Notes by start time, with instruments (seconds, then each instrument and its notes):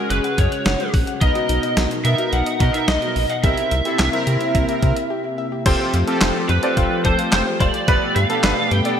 Already playing: analog synth pad C#3 G#3 F#4, analog polysynth G#3 C#4 G#4, lead electric guitar A#4
0.10 analog synth bass F#1, lead electric guitar B4, synth pluck F#6, closed hi-hat
0.24 synth pluck F#5, closed hi-hat
0.38 analog synth bass F#2, lead electric guitar C#5, kick, closed hi-hat
0.52 synth pluck F#6, closed hi-hat
0.66 analog synth bass F#1, synth pluck F#5, snare, closed hi-hat
0.80 synth pluck F#4, closed hi-hat
0.94 analog synth bass A#1, synth pluck F#6, kick, open hi-hat
1.07 synth pluck F#5, closed hi-hat
1.21 analog synth bass B1, analog synth pad B2 D#4 A#4, analog polysynth B3 D#4 A#4, lead electric guitar D#5, synth pluck D#5, kick, closed hi-hat
1.35 synth pluck F#4, closed hi-hat
1.49 analog synth bass B1, synth pluck D#4, closed hi-hat
1.63 synth pluck D#5, closed hi-hat
1.77 analog synth bass B1, synth pluck F#4, snare, closed hi-hat
1.91 synth pluck D#4, closed hi-hat
2.05 analog synth bass B2, analog polysynth B3 D#4 A#4, lead electric guitar E5, closed hi-hat
2.18 synth pluck F#4, closed hi-hat
2.32 analog synth bass B1, synth pluck D#4, lead electric guitar F#5, closed hi-hat
2.46 synth pluck D#5, closed hi-hat
2.60 analog synth bass B2, analog polysynth B3 D#4 A#4, synth pluck F#4, lead electric guitar D#5, kick, closed hi-hat
2.74 synth pluck D#4, lead electric guitar E5, closed hi-hat
2.88 analog synth bass B1, lead electric guitar D#5, synth pluck D#5, snare, closed hi-hat
3.02 synth pluck F#4, closed hi-hat
3.16 analog synth bass A#1, synth pluck D#4, open hi-hat
3.30 synth pluck D#5, lead electric guitar F#5, closed hi-hat
3.43 analog synth bass C2, analog synth pad C3 A#3 E4, analog polysynth C4 E4 A#4, synth pluck G4, lead electric guitar E5, kick, closed hi-hat
3.57 synth pluck E4, closed hi-hat
3.71 analog synth bass C2, synth pluck E5, closed hi-hat
3.85 analog polysynth C4 E4 A4, synth pluck G4, closed hi-hat
3.99 analog synth bass C2, synth pluck E4, snare, clap, closed hi-hat
4.13 analog polysynth C4 E4 A#4, synth pluck E5, closed hi-hat
4.27 analog synth bass C3, synth pluck G4, closed hi-hat
4.41 synth pluck E4, closed hi-hat
4.55 analog synth bass C2, synth pluck E5, kick, closed hi-hat
4.69 synth pluck G4, closed hi-hat
4.82 analog synth bass C3, kick, closed hi-hat
4.96 synth pluck E5, closed hi-hat
5.10 synth pluck G4
5.24 synth pluck E4
5.38 synth pluck E5
5.52 synth pluck G4
5.66 analog synth bass F1, analog synth pad F3 A3 G4, analog polysynth C4 F4 G4 A4, synth pluck G4, grand piano C5, kick, closed hi-hat, crash
5.80 synth pluck C5
5.94 analog synth bass F2, synth pluck F5, closed hi-hat
6.07 analog polysynth C4 F4 G4 A4, synth pluck G4, grand piano A4, closed hi-hat
6.21 analog synth bass F1, synth pluck C5, grand piano C5, snare, clap, closed hi-hat
6.49 analog synth bass F2, synth pluck G4, lead electric guitar B4, closed hi-hat
6.63 analog polysynth C4 F4 G4 A4, synth pluck C5, grand piano D5, closed hi-hat
6.77 analog synth bass F1, grand piano C5, synth pluck F5, kick, closed hi-hat
6.91 synth pluck G4
7.05 analog synth bass F1, grand piano A4, lead electric guitar C5, synth pluck C5, kick, closed hi-hat
7.19 synth pluck F5, closed hi-hat
7.32 analog synth bass F1, synth pluck G4, grand piano C5, lead electric guitar C5, snare, clap, closed hi-hat
7.46 synth pluck C5
7.60 analog synth bass F1, grand piano C5, lead electric guitar D5, synth pluck F5, kick, closed hi-hat
7.74 synth pluck G4, closed hi-hat
7.88 analog synth bass G1, analog synth pad B2, analog polysynth B3 D4 G4 A4, synth pluck B4, grand piano B4, kick, closed hi-hat
8.02 synth pluck D5
8.16 analog synth bass G2, synth pluck G4, lead electric guitar F5, closed hi-hat
8.30 analog polysynth B3 D4 G4 A4, grand piano A4, synth pluck B4, closed hi-hat
8.44 analog synth bass G1, grand piano B4, synth pluck D5, snare, clap, closed hi-hat
8.58 synth pluck G4
8.71 analog synth bass G2, synth pluck B4, lead electric guitar G5, closed hi-hat
8.85 analog polysynth B3 D4 G4 A4, synth pluck D5, grand piano D5, closed hi-hat